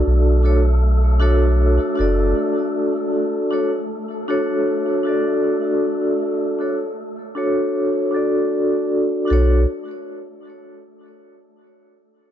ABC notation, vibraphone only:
X:1
M:4/4
L:1/8
Q:"Swing 16ths" 1/4=78
K:Bm
V:1 name="Vibraphone"
[DFAd] [DFAc] z [DFAc]2 [DFAd]3- | [DFAd] [DFAc] z [DFAc]2 [DFAd]3- | [DFAd] [DFAc] z [DFAc]2 [DFAd]3 | [DFAc] z6 z |]